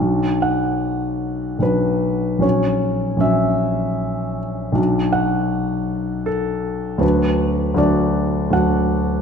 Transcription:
<<
  \new Staff \with { instrumentName = "Grand piano" } { \time 3/4 \key b \minor \tempo 4 = 79 r8 fis''4. b'4 | cis''4 e''4. r8 | r8 fis''4. a'4 | b'4 d''4 fis''4 | }
  \new Staff \with { instrumentName = "Grand piano" } { \time 3/4 \key b \minor <b,, fis d' fis'>2 <b,, fis d' fis'>4 | <ais,, fis cis' fis'>4 <ais,, fis cis' fis'>2 | <b,, fis d' fis'>2. | <d, fis d' fis'>4 <d, fis d' fis'>4 <d, fis d' fis'>4 | }
>>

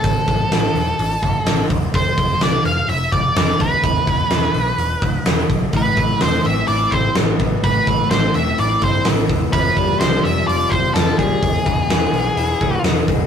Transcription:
<<
  \new Staff \with { instrumentName = "Lead electric guitar" } { \time 4/4 \key a \minor \tempo 4 = 126 a'2.~ a'8 r8 | c''4 d''8 f''8 e''8 d''8 d''8 b'8~ | b'2.~ b'8 r8 | b'4 c''8 e''8 d''8 c''8 r4 |
b'4 c''8 e''8 d''8 c''8 r4 | b'4 c''8 e''8 d''8 c''8 a'8 gis'8~ | gis'2. r4 | }
  \new Staff \with { instrumentName = "Clean electric guitar" } { \clef bass \time 4/4 \key a \minor r1 | r1 | r1 | a,8 e8 e8 c'8 e'8 c'8 e8 b8 |
a,8 e8 e8 c'8 e'8 c'8 e8 b8 | f8 g8 f8 c'8 f'8 c'8 f8 g8 | e,8 b,8 e8 b8 e'8 b8 e8 gis8 | }
  \new Staff \with { instrumentName = "Picked electric bass" } { \clef bass \time 4/4 \key a \minor a,,8 a,,8 a,,8 e,,8 a,,8 g,,8 a,,8 e,,8 | f,,8 f,,8 c,8 f,,8 f,,8 f,,8 f,,8 d,8 | e,,8 e,,8 e,,8 b,,8 e,,8 d,8 e,,8 b,,8 | a,,8 a,,8 e,,8 a,,8 a,,8 a,,8 a,,8 a,,8 |
a,,8 a,,8 a,,8 e,,8 a,,8 g,,8 a,,8 e,,8 | f,,8 f,,8 c,8 f,,8 f,,8 f,,8 f,,8 d,8 | e,,8 e,,8 e,,8 b,,8 e,,8 d,8 e,,8 e,,8 | }
  \new DrumStaff \with { instrumentName = "Drums" } \drummode { \time 4/4 <hho bd>8 <hho bd>8 <hho sn>8 hho8 hho8 <hho bd>8 <hho sn>8 <hho bd>8 | <hho bd>8 <hho bd>8 <hho sn>8 hho8 hho8 <hho bd>8 <hho sn>8 <hho bd>8 | <hho bd>8 <hho bd>8 <hho sn>8 hho8 hho8 <hho bd>8 <hho sn>8 <hho bd>8 | <hho bd>8 <hho bd>8 <hho sn>8 hho8 hho8 <hho bd>8 <hho sn>8 <hho bd>8 |
<hho bd>8 <hho bd>8 <hho sn>8 hho8 hho8 <hho bd>8 <hho sn>8 <hho bd>8 | <hho bd>8 <hho bd>8 <hho sn>8 hho8 hho8 <hho bd>8 <hho sn>8 <hho bd>8 | <hho bd>8 <hho bd>8 <hho sn>8 hho8 hho8 <hho bd>8 <hho sn>8 <hho bd>8 | }
>>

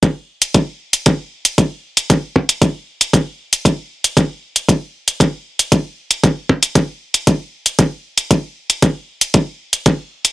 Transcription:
\new DrumStaff \with { instrumentName = "Drums" } \drummode { \time 4/4 \tempo 4 = 116 <hh bd>8. hh16 <hh bd>8. hh16 <hh bd>8. hh16 <hh bd>8. hh16 | <hh bd>8 bd16 hh16 <hh bd>8. hh16 <hh bd>8. hh16 <hh bd>8. hh16 | <hh bd>8. hh16 <hh bd>8. hh16 <hh bd>8. hh16 <hh bd>8. hh16 | <hh bd>8 bd16 hh16 <hh bd>8. hh16 <hh bd>8. hh16 <hh bd>8. hh16 |
<hh bd>8. hh16 <hh bd>8. hh16 <hh bd>8. hh16 <hh bd>8. hh16 | }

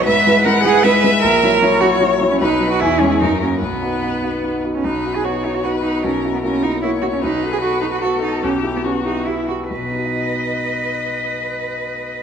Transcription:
<<
  \new Staff \with { instrumentName = "Violin" } { \time 3/4 \key b \major \tempo 4 = 150 e''4 fis''4 e''4~ | e''4 cis''2 | b'4 gis'4 ais'4 | b'2~ b'8 r8 |
b'4 cis''4 b'4 | ais'4 ais'4 cis''4 | b'2 a'4 | g'4 fis'4 e'8 r8 |
dis''2.~ | dis''2. | }
  \new Staff \with { instrumentName = "Grand piano" } { \time 3/4 \key b \major gis,8 <gis e' b'>8 <gis e' b'>8 <gis e' b'>8 <gis e' b'>8 <gis e' b'>8 | ais,,8 <fis e' cis''>8 <fis e' cis''>8 <fis e' cis''>8 <fis e' cis''>8 <fis e' cis''>8 | b,,8 <fis dis' b'>8 e,8 <gis cis' gis'>8 fis,8 <ais cis' fis'>8 | b,,8 <b dis' fis'>8 <b dis' fis'>8 <b dis' fis'>8 <b dis' fis'>8 <b dis' fis'>8 |
b,,8 <dis' fis'>8 <b dis' fis'>8 <dis' fis'>8 <b dis' fis'>8 <dis' fis'>8 | b,,8 <e' fis'>8 <ais e' fis'>8 <e' fis'>8 <ais e' fis'>8 <e' fis'>8 | b,,8 <fis' a'>8 <b fis' a'>8 <fis' a'>8 <b fis' a'>8 <fis' a'>8 | b,,8 <e' g'>8 <b e' g'>8 <e' g'>8 <b e' g'>8 <e' g'>8 |
<b,, b, b dis' fis' dis''>2.~ | <b,, b, b dis' fis' dis''>2. | }
  \new Staff \with { instrumentName = "Cello" } { \time 3/4 \key b \major b'4 ais'8 gis'8 b'4 | ais'4. fis'8 r8. cis'16 | dis'8. fis'16 e'8 cis'16 e'16 dis'8 cis'8 | b2~ b8 r16 cis'16 |
dis'8. gis'16 fis'8 dis'16 fis'16 fis'8 dis'8 | cis'8. b16 cis'8 dis'8 e'8 fis'16 cis'16 | dis'8. gis'16 fis'8 dis'16 fis'16 fis'8 dis'8 | cis'8. b16 cis'8 dis'8 e'8 fis'16 r16 |
b'2.~ | b'2. | }
>>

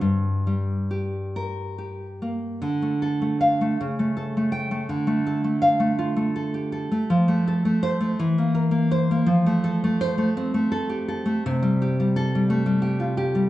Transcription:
\new Staff \with { instrumentName = "Nylon-string guitar" } { \time 6/8 \key g \minor \tempo 4. = 55 << { r4. bes'4 r8 | \key d \minor r4 f''8 r4 g''8 | r4 f''8 r4. | r4 c''8 r4 c''8 |
r4 c''8 r4. | \key f \mixolydian r4 a'8 r4. | } \\ { g,8 g8 g'4 g'8 bes8 | d16 a16 a'16 a8 a16 cis16 a16 a'16 a8 a16 | d16 a16 a'16 a8 a16 f'16 a16 a'16 g'16 a'16 a16 | f16 a16 a'16 a8 a16 e16 bes16 bes'16 bes8 bes16 |
f16 a16 a'16 a8 a16 c'16 a16 a'16 g'16 a'16 a16 | c16 g16 g'16 g8 g16 a16 g16 g'16 f'16 g'16 g16 | } >> }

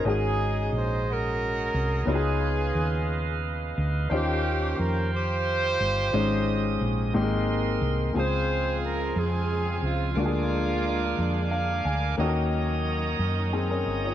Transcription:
<<
  \new Staff \with { instrumentName = "Tonewheel organ" } { \time 6/8 \key des \major \tempo 4. = 59 << { aes'2. | ces''2. | c''2. | <des' ees'''>4. <bes' c'''>4. |
c'2. | <bes' d'''>2. | <des'' ees'''>2. | } \\ { ees''2. | <ees'' f''>2. | g''2. | ees''2. |
<f'' aes''>2.~ | <f'' aes''>2. | <ees'' bes''>2. | } >> }
  \new Staff \with { instrumentName = "Horn section" } { \time 6/8 \key des \major << { aes'4 c''8 bes'4. | aes'2 r4 | g'4 bes'8 c''4.~ | c''2 r4 |
c''4 bes'8 aes'4 f'8 | f'2~ f'8 r8 | r2. | } \\ { <des' ees'>4. <des' ges'>4. | <ces' f'>2 r4 | <bes des'>4. <f' g'>4.~ | <f' g'>2 r4 |
<f' aes'>4. <c' f'>4. | <aes bes>2~ <aes bes>8 r8 | r2. | } >> }
  \new Staff \with { instrumentName = "Grand piano" } { \time 6/8 \key des \major << { bes'16 r2 r8. | r2. | r2. | r2. |
r2. | r2 f''8 aes''8 | r2 <c' aes'>16 <des' bes'>8 <f' des''>16 | } \\ { <aes des' ees' ges' aes'>2. | <ces' des' ees' f' ges' aes'>2. | <des' ees' f' g' c''>2. | <aes des' ees'>4. <aes bes c' ees' g' bes'>4. |
<aes c' f' aes'>2. | <aes bes d' f' ges' aes'>2. | <bes des' ees' ges' a' bes'>2. | } >> }
  \new Staff \with { instrumentName = "Grand piano" } { \clef bass \time 6/8 \key des \major aes,4. r4. | des4. r4. | ees4. r4. | aes,4. aes,4. |
des4. r4. | d4. r4. | ees4. r4. | }
  \new Staff \with { instrumentName = "String section" } { \time 6/8 \key des \major << { r2. | r2. | r2. | r2. |
<des c'>2. | <bes d'>2. | <des' ees'>2. | } \\ { r2. | r2. | r2. | r2. |
<f aes>2.~ | <f aes>2. | ges2. | } >> }
  \new Staff \with { instrumentName = "Fingered electric bass" } { \clef bass \time 6/8 \key des \major aes,,4 bes,,4. c,8 | des,4 ees,4. d,8 | ees,4 f,4. g,,8 | aes,,4 bes,,8 aes,,4 c,8 |
des,4. f,4 des,8 | d,4. f,4 d,8 | ees,4. ges,4 g,,8 | }
>>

